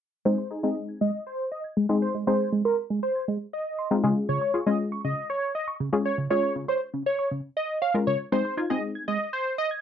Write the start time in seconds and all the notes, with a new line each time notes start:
0.25 G#3 C4 D#4 G#4 C5
0.38 C6
0.51 D#4 G#4 G#6
0.63 G#3 C4 D#4 G#4 D#5
0.89 G#6
1.01 G#3 D#5
1.26 C5 G#6
1.52 D#5
1.64 G#6
1.77 G#3
1.89 G#3 C4 D#4 G#4 C6
2.02 C5
2.15 G#3
2.27 G#3 C4 D#4 G#4 C5 C6
2.40 G#6
2.52 G#3
2.65 A#4 C6
2.90 G#3
3.03 C5
3.15 G#6
3.28 G#3
3.53 D#5
3.79 C6
3.91 G#3 C4 D#4 F4
4.03 C#3 G#3 C#4 F4 G#4
4.29 C#3 C#5
4.41 C#5
4.54 F4 G#4 C#6
4.66 G#3 C#4 F4 G#4 D#5
4.92 C#6
5.05 C#3 D#5
5.30 C#5 C#6
5.55 D#5
5.68 C#6
5.80 C#3
5.93 G#3 C#4 F4 G#4 C#5
6.05 C#5
6.18 C#3
6.30 G#3 C#4 F4 G#4 C#5
6.43 C#6
6.56 C#3
6.68 C5 C#5
6.94 C#3
7.06 C#5
7.19 C#6
7.31 C#3
7.57 D#5
7.82 C#5 F5
7.94 G#3 C#4 F4 A#4
8.07 C#3 C#5
8.32 G#3 C4 D#4 G#4 C5
8.45 C6
8.57 D#4 F4 G#6
8.70 G#3 C4 D#4 G#4 D#5
8.95 G#6
9.08 G#3 D#5
9.33 C5 G#6
9.58 D#5
9.71 G#6